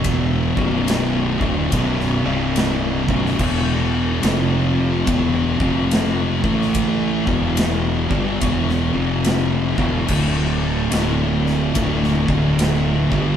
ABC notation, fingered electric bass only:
X:1
M:4/4
L:1/8
Q:"Swing" 1/4=72
K:D
V:1 name="Fingered electric bass" clef=bass
E,,, B,,,,2 D,,, B,,,, =C,,,2 B,,,, | E,,,2 =F,,,2 E,,, F,,,2 A,,,- | A,,, E,,,2 G,,, E,,, =F,,,2 E,,, | D,,,2 D,,,2 D,,, D,,,2 G,,, |]